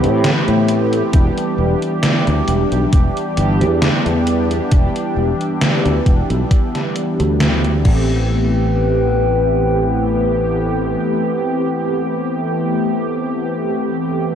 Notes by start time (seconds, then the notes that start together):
Already playing: E3 A3 B3 C4 G4 B5
0.03 A2, closed hi-hat
0.24 snare, closed hi-hat
0.48 A2, closed hi-hat
0.68 closed hi-hat
0.93 closed hi-hat
1.13 E1 E3 G3 B3 D4 G4 E5 D6, kick, closed hi-hat
1.38 closed hi-hat
1.58 E1
1.82 closed hi-hat
2.03 snare, closed hi-hat
2.27 D2, closed hi-hat
2.48 E1, closed hi-hat
2.72 B1, closed hi-hat
2.93 E1, kick, closed hi-hat
3.17 closed hi-hat
3.36 G1 E3 G3 B3 D4 G4, closed hi-hat
3.61 E2, closed hi-hat
3.82 snare, closed hi-hat
4.06 E2, closed hi-hat
4.27 closed hi-hat
4.51 closed hi-hat
4.71 E1 E3 G3 B3 D4 G4 E6, kick, closed hi-hat
4.96 closed hi-hat
5.16 E1
5.41 closed hi-hat
5.61 snare, closed hi-hat
5.85 D2, closed hi-hat
6.06 E1, kick, closed hi-hat
6.30 B1, closed hi-hat
6.51 kick, closed hi-hat
6.75 snare, closed hi-hat
6.96 closed hi-hat
7.20 D2, closed hi-hat
7.39 E3 G3 B3 D4 G4, snare, closed hi-hat
7.64 closed hi-hat
7.83 A1 E3 A3 B3 C4 B4 G5, kick, crash
7.88 G4